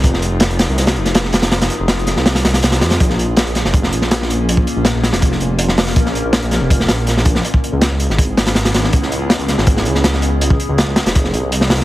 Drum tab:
HH |x-x-xxxxxxxxx-xx|xxx-xxx-xxxxxxxx|x-x-xxx-x-x-x-x-|x-x-x-xxx-x-x-o-|
SD |-o--o-o-oo-ooooo|oo--o-oooooooooo|-o--o-oo-o-ooo--|----o-oo-o---ooo|
BD |o---------------|----------------|o-------o-------|-o------o-------|

HH |x-x-xxx-x-xxx-x-|x-x-x-x-x-xxxxx-|x-x-xxx-x-x-x-x-|x-x-x-xxx-x-x-o-|
SD |-o--o-o--oo-oo-o|----o--o--oooooo|-o--o-oo-o-ooo--|----o-oo-o---ooo|
BD |o-------o-----o-|-o------o-------|o-------o-------|-o------o-------|